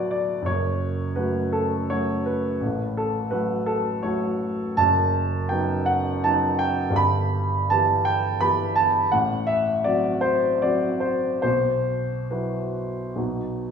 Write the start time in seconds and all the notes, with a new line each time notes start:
Already playing: D1 D2 F#3 B3 F#4 B4 C#5 D5
0.11 D5
0.42 F#2 C#5
0.47 F#1
1.16 F#3 A3 F#4 B4
1.52 A4
1.90 F#3 A3 F#4 C#5
2.26 B4
2.61 A1
2.65 A2
2.97 A4
3.31 F#3 A3 F#4 B4
3.66 A4
4.03 F#3 A3 F#4 C#5
4.77 F#1 F#2 A5
5.49 F#3 B3 D#4 G5
5.86 F#5
6.24 F#3 B3 D#4 A5
6.59 G5
6.90 G1 G2
6.96 B5
7.70 E3 B3 G4 A5
8.05 G5
8.41 E3 B3 G4 B5
8.76 A5
9.12 A1 A2 F#5
9.47 E5
9.84 F#3 C4 F#4 D5
10.21 C5
10.62 F#3 C4 F#4 D5
11.00 C5
11.42 B1 B2 C5
12.30 F#3 E4 F#4 B4
13.16 B1 B2 F#3 D#4 F#4